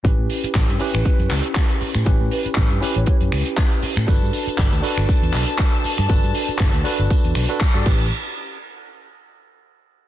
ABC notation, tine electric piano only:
X:1
M:4/4
L:1/16
Q:"Swing 16ths" 1/4=119
K:Amix
V:1 name="Tine electric piano"
[CEGB]6 [CEGB]8- [CEGB]2 | [CEGB]6 [CEGB]8- [CEGB]2 | [DFAB]6 [DFAB]8- [DFAB]2 | [DFAB]6 [DFAB]4- [DFAB] [DFAB] z [DFAd] [CEGB]2 |
z16 |]